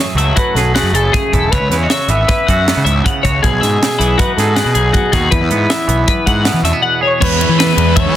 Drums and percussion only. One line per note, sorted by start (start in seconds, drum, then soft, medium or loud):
0.18 closed hi-hat medium
0.37 kick medium
0.37 closed hi-hat medium
0.56 snare soft
0.56 closed hi-hat medium
0.76 snare loud
0.76 closed hi-hat medium
0.95 closed hi-hat medium
1.14 kick loud
1.14 snare soft
1.14 closed hi-hat medium
1.33 kick medium
1.33 closed hi-hat medium
1.53 kick medium
1.53 closed hi-hat medium
1.72 snare soft
1.72 closed hi-hat medium
1.90 snare loud
1.90 closed hi-hat medium
2.09 closed hi-hat medium
2.29 kick loud
2.29 snare soft
2.29 closed hi-hat medium
2.48 kick medium
2.48 closed hi-hat medium
2.68 snare loud
2.68 closed hi-hat medium
2.86 closed hi-hat medium
3.06 kick loud
3.06 closed hi-hat medium
3.25 kick medium
3.25 closed hi-hat medium
3.44 kick medium
3.44 closed hi-hat medium
3.63 snare soft
3.63 closed hi-hat medium
3.83 snare loud
3.83 closed hi-hat medium
4.01 closed hi-hat medium
4.19 kick loud
4.19 closed hi-hat medium
4.38 snare soft
4.38 closed hi-hat medium
4.56 snare loud
4.56 closed hi-hat medium
4.75 closed hi-hat medium
4.94 kick loud
4.94 closed hi-hat medium
5.13 kick medium
5.13 snare soft
5.13 closed hi-hat medium
5.32 kick loud
5.32 closed hi-hat medium
5.51 closed hi-hat medium
5.70 snare loud
5.70 closed hi-hat medium
5.89 closed hi-hat medium
6.08 kick medium
6.08 closed hi-hat medium
6.27 kick medium
6.27 closed hi-hat medium
6.45 snare loud
6.45 closed hi-hat medium
6.65 snare soft
6.65 closed hi-hat medium
7.22 kick loud
7.22 crash loud
7.41 ride medium
7.60 snare loud
7.60 ride loud
7.78 ride medium
7.97 kick loud
7.97 ride loud